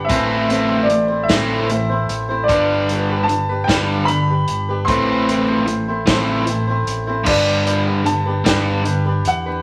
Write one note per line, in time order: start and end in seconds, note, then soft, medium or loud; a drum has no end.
0.00 0.10 D4 soft
0.05 0.87 A2 medium
0.05 0.90 E5 medium
0.09 1.26 A1 loud
0.09 0.50 A2 medium
0.09 0.50 E3 medium
0.09 0.87 E3 medium
0.09 0.48 A3 medium
0.09 0.87 C4 loud
0.09 0.49 C4 medium
0.09 0.49 E4 medium
0.09 0.50 C5 medium
0.09 kick loud
0.09 closed hi-hat medium
0.49 0.70 A3 medium
0.49 0.70 C4 medium
0.49 0.69 E4 medium
0.49 0.69 C5 medium
0.49 closed hi-hat medium
0.70 1.10 A3 soft
0.70 1.09 C4 soft
0.70 1.08 E4 soft
0.70 1.07 C5 medium
0.83 1.28 D5 medium
0.89 1.26 A2 medium
0.89 1.26 E3 medium
0.89 closed hi-hat medium
1.08 1.30 A3 soft
1.08 1.29 C4 soft
1.08 1.30 E4 soft
1.08 1.29 C5 soft
1.23 2.12 E5 medium
1.28 2.05 A1 medium
1.28 1.67 A2 medium
1.28 1.70 A2 medium
1.28 1.67 E3 medium
1.28 1.70 E3 medium
1.28 1.68 A3 medium
1.28 1.67 C4 medium
1.28 1.69 C4 medium
1.28 1.70 E4 medium
1.28 1.71 C5 medium
1.28 kick medium
1.28 snare loud
1.28 closed hi-hat medium
1.70 2.06 A2 medium
1.70 2.06 E3 medium
1.70 1.90 A3 medium
1.70 1.90 C4 medium
1.70 1.90 E4 medium
1.70 1.88 C5 medium
1.70 closed hi-hat medium
1.89 2.30 A3 soft
1.89 2.29 C4 soft
1.89 2.29 E4 soft
1.89 2.28 C5 medium
2.09 2.46 A1 medium
2.09 closed hi-hat medium
2.29 2.48 A3 soft
2.29 2.49 C4 soft
2.29 2.50 E4 medium
2.29 2.49 C5 medium
2.44 3.22 D5 medium
2.48 3.65 G1 loud
2.48 3.26 G2 medium
2.48 3.26 D3 loud
2.48 2.89 G3 medium
2.48 3.27 G3 loud
2.48 2.90 D4 medium
2.48 2.90 G4 medium
2.48 2.90 B4 medium
2.48 kick medium
2.48 closed hi-hat medium
2.89 3.10 G3 medium
2.89 3.10 D4 medium
2.89 3.10 G4 medium
2.89 3.09 B4 medium
2.89 closed hi-hat medium
3.10 3.51 D4 soft
3.10 3.50 G4 soft
3.10 3.48 B4 medium
3.24 3.67 A5 loud
3.28 3.64 G2 medium
3.28 3.65 D3 medium
3.28 closed hi-hat medium
3.49 3.67 D4 soft
3.49 3.68 G4 soft
3.49 3.69 B4 medium
3.64 4.06 G2 medium
3.64 4.06 G3 medium
3.64 3.74 G5 medium
3.68 4.44 G1 medium
3.68 4.06 D3 medium
3.68 4.07 G3 medium
3.68 4.07 D4 medium
3.68 4.08 G4 medium
3.68 4.09 B4 medium
3.68 kick medium
3.68 snare loud
3.68 closed hi-hat medium
4.05 4.45 G2 medium
4.05 4.45 D3 medium
4.05 4.28 G3 medium
4.05 4.28 D4 medium
4.05 4.89 B5 medium
4.05 closed hi-hat medium
4.09 4.29 G4 medium
4.09 4.26 B4 medium
4.27 4.69 D4 soft
4.27 4.69 G4 medium
4.27 4.68 B4 medium
4.48 4.85 G1 medium
4.48 closed hi-hat medium
4.69 4.89 D4 soft
4.69 4.89 G4 soft
4.69 4.89 B4 soft
4.85 6.04 A1 loud
4.85 5.65 A2 medium
4.85 5.28 A2 medium
4.85 5.65 E3 medium
4.85 5.28 E3 medium
4.85 5.65 C4 medium
4.85 6.42 C6 medium
4.85 kick loud
4.85 closed hi-hat medium
4.89 5.29 A3 medium
4.89 5.29 C4 medium
4.89 5.29 E4 medium
4.89 5.29 C5 medium
5.29 5.49 A3 medium
5.29 5.49 C4 medium
5.29 5.48 E4 medium
5.29 5.47 C5 medium
5.29 closed hi-hat medium
5.48 5.89 A3 soft
5.48 5.88 C4 soft
5.48 5.87 E4 soft
5.48 5.87 C5 medium
5.66 6.03 A2 medium
5.66 6.03 E3 medium
5.66 closed hi-hat medium
5.88 6.08 A3 soft
5.88 6.08 C4 soft
5.88 6.08 E4 soft
5.88 6.08 C5 medium
6.06 6.83 A1 loud
6.06 6.44 A2 medium
6.06 6.48 A2 medium
6.06 6.44 E3 medium
6.06 6.48 E3 medium
6.06 6.46 A3 medium
6.06 6.45 C4 medium
6.06 6.48 E4 loud
6.06 kick medium
6.06 snare loud
6.06 closed hi-hat medium
6.10 6.48 C4 medium
6.10 6.48 C5 medium
6.45 6.82 A2 medium
6.45 6.82 E3 medium
6.45 6.67 A3 medium
6.45 6.68 C4 medium
6.45 6.68 E4 medium
6.45 closed hi-hat medium
6.50 6.66 C5 medium
6.67 7.08 A3 soft
6.67 7.08 C4 medium
6.67 7.06 E4 medium
6.67 7.06 C5 medium
6.86 7.23 A1 medium
6.86 closed hi-hat medium
7.07 7.25 A3 soft
7.07 7.26 C4 soft
7.07 7.27 E4 medium
7.07 7.27 C5 medium
7.24 8.42 G1 loud
7.24 8.03 G2 medium
7.24 8.03 D3 medium
7.24 7.64 G3 medium
7.24 8.03 G3 medium
7.24 7.65 D4 medium
7.24 7.66 G4 medium
7.24 7.67 B4 medium
7.24 8.09 D5 medium
7.24 kick loud
7.24 crash loud
7.65 7.86 G3 medium
7.65 7.86 D4 medium
7.65 7.86 G4 medium
7.65 7.84 B4 medium
7.65 closed hi-hat medium
7.85 8.27 D4 soft
7.85 8.26 G4 soft
7.85 8.25 B4 soft
8.04 8.41 G2 medium
8.04 8.41 D3 medium
8.04 8.47 A5 medium
8.04 closed hi-hat medium
8.26 8.45 D4 soft
8.26 8.45 G4 soft
8.26 8.46 B4 medium
8.44 9.21 G1 medium
8.44 8.82 G2 medium
8.44 8.83 D3 medium
8.44 8.83 G3 loud
8.44 8.83 G3 medium
8.44 8.85 D4 medium
8.44 8.86 G4 medium
8.44 8.86 B4 medium
8.44 9.28 G5 medium
8.44 kick medium
8.44 snare loud
8.44 closed hi-hat medium
8.83 9.20 G2 medium
8.83 9.21 D3 medium
8.83 9.05 G3 medium
8.83 9.06 D4 medium
8.83 9.06 G4 medium
8.83 closed hi-hat medium
8.88 9.04 B4 medium
9.06 9.47 D4 soft
9.06 9.46 G4 soft
9.06 9.45 B4 medium
9.25 9.62 E2 medium
9.25 9.62 F#5 medium
9.25 closed hi-hat medium
9.46 9.62 D4 soft
9.46 9.62 G4 soft
9.46 9.62 B4 medium